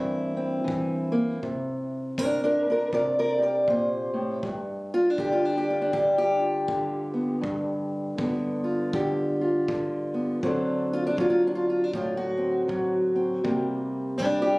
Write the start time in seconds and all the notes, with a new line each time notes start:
Already playing: G2 E3 A#3 C4 E4
0.37 C4
0.64 E3, kick
1.12 A#3
1.42 C3, kick
2.18 D4 A#4, kick
2.44 D4 A#4
2.70 D4 A#4
2.93 C3 A#4 D5, kick
3.19 A#4 D5
3.38 G4 A#4
3.43 D5
3.68 A#2 C5, kick
4.14 A2
4.43 G2, kick
4.94 F4
5.10 D4
5.18 D3 G4, kick
5.32 F4
5.45 D4
5.57 G4
5.70 F4
5.81 D4
5.92 D3 G4, kick
6.18 G4
6.39 F4
6.68 D3, kick
7.14 B3
7.41 G2, kick
8.18 D3 B3, kick
8.64 F4
8.93 D3 G4, kick
9.41 F4
9.68 D3, kick
10.14 B3
10.43 D3 F#3 C4 D4 A4, kick
10.93 F4
11.07 D4
11.17 F#3 F4, kick
11.30 F4
11.47 D4
11.55 F4
11.70 F4
11.84 D4
11.94 A2 F4, kick
12.17 F#4
12.37 C4
12.68 F#3, kick
13.16 C4
13.44 C3 G3 A#3, kick
14.18 G3 D4, kick
14.42 G4